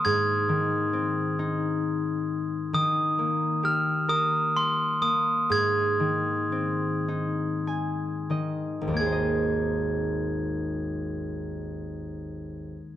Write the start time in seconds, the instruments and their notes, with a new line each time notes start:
Already playing: harp D#3 A#3 G4 A#4
0.05 harp G#2, glockenspiel G#6
0.49 harp D#3
0.93 harp C4
1.39 harp D#4
2.73 harp D#3, glockenspiel D#6
3.19 harp A#3
3.63 harp G4, glockenspiel F6
4.08 harp A#4, glockenspiel D#6
4.56 glockenspiel C6
5.01 harp A#3, glockenspiel D#6
5.50 harp G#2, glockenspiel G#6
6.00 harp D#3
6.52 harp C4
7.08 harp D#4
7.67 harp G#5
8.30 harp D#3 D#5
8.81 harp G#1
8.88 harp D#2
8.93 harp A#3, glockenspiel G#6
9.00 harp G#4
9.06 harp C5
9.12 harp D#5